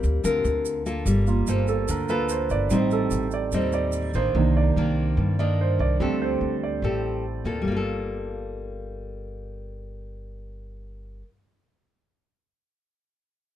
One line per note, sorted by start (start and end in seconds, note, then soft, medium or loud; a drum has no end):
0.00 0.23 D2 medium
0.00 0.23 G3 medium
0.00 0.21 C4 medium
0.00 0.21 F4 medium
0.00 0.63 G4 medium
0.00 0.22 A#4 medium
0.00 shaker soft
0.24 0.43 D2 medium
0.24 1.04 D3 medium
0.24 0.83 C4 soft
0.24 0.83 F4 medium
0.24 0.83 A#4 medium
0.24 shaker medium
0.44 1.02 D2 medium
0.44 shaker soft
0.65 shaker medium
0.86 1.24 A#3 medium
0.86 1.24 F4 medium
0.86 1.24 A4 medium
0.86 shaker soft
1.06 1.44 G1 medium
1.06 1.87 G3 soft
1.06 shaker medium
1.27 2.67 A#3 soft
1.27 2.68 F4 soft
1.27 shaker soft
1.47 1.86 G1 medium
1.47 1.89 A#3 soft
1.47 1.89 F4 medium
1.47 1.89 A4 medium
1.47 1.69 C5 medium
1.47 shaker medium
1.68 1.88 A4 medium
1.68 shaker soft
1.88 2.46 D2 medium
1.88 2.69 D3 medium
1.88 2.09 A#4 soft
1.88 shaker medium
2.09 2.68 A#3 medium
2.09 2.68 F4 medium
2.09 2.68 A4 medium
2.09 2.30 B4 medium
2.09 shaker soft
2.29 2.50 C5 medium
2.29 shaker medium
2.50 2.69 G1 medium
2.50 2.71 D5 medium
2.50 shaker soft
2.70 3.09 A1 medium
2.70 3.51 A2 soft
2.70 3.30 G3 soft
2.70 3.27 G3 medium
2.70 3.30 C4 soft
2.70 3.27 C4 medium
2.70 3.30 D#4 soft
2.70 3.27 D#4 medium
2.70 2.92 C5 medium
2.70 shaker medium
2.91 3.05 A4 medium
2.91 shaker soft
3.11 3.50 A1 medium
3.11 shaker medium
3.31 3.53 D5 medium
3.31 shaker soft
3.52 4.11 D#2 medium
3.52 4.34 A2 medium
3.52 4.12 G3 medium
3.52 4.12 C4 medium
3.52 4.12 D#4 medium
3.52 3.74 C5 soft
3.52 shaker medium
3.72 4.12 D5 medium
3.72 shaker soft
3.92 shaker medium
4.14 4.34 A1 medium
4.14 4.73 D#3 soft
4.14 4.74 A#3 medium
4.14 4.74 D4 medium
4.14 4.54 C5 medium
4.14 shaker soft
4.35 4.73 C2 loud
4.35 5.16 C3 soft
4.35 5.96 D#3 soft
4.35 5.97 A#3 soft
4.35 5.97 D4 soft
4.57 4.95 D5 medium
4.76 5.15 C2 medium
4.76 5.36 D#3 medium
4.76 5.36 A#3 medium
4.76 5.36 D4 medium
5.17 5.75 G2 medium
5.17 5.99 G2 soft
5.39 5.97 D#3 medium
5.39 5.98 A#3 medium
5.39 5.98 D4 medium
5.39 5.59 D5 medium
5.61 5.80 C5 medium
5.79 5.99 C2 medium
5.79 6.19 D5 medium
6.00 6.39 D2 medium
6.00 6.81 D3 soft
6.00 6.28 G3 soft
6.00 6.28 A3 soft
6.00 6.56 C4 medium
6.00 6.28 C4 soft
6.00 6.56 G4 medium
6.00 6.57 A4 medium
6.22 6.60 C5 medium
6.41 6.80 D2 medium
6.63 7.01 D5 medium
6.82 7.40 A1 medium
6.82 7.64 A2 soft
6.82 7.25 C4 soft
6.82 7.24 G4 soft
6.82 7.25 A4 soft
7.45 7.64 D2 medium
7.45 7.66 A#3 soft
7.45 7.71 F4 medium
7.45 7.75 A4 medium
7.62 11.21 G1 medium
7.62 11.22 G3 medium
7.68 11.28 A#3 medium
7.72 11.32 F4 medium
7.77 11.37 A4 medium